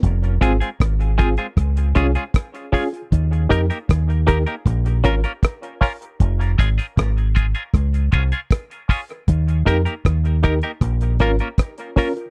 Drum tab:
HH |xxxxxxxxxxxxxxox|xxxxxxxxxxxxxxox|xxxxxxxxxxxxxxox|xxxxxxxxxxxxxxox|
SD |----r---r---r---|----r-------r---|----r---r---r---|----r---r---r---|
BD |o-o-o-o-o-o-o-o-|o-o-o-o-o-o-o-o-|o-o-o-o-o-o-o-o-|o-o-o-o-o-o-o-o-|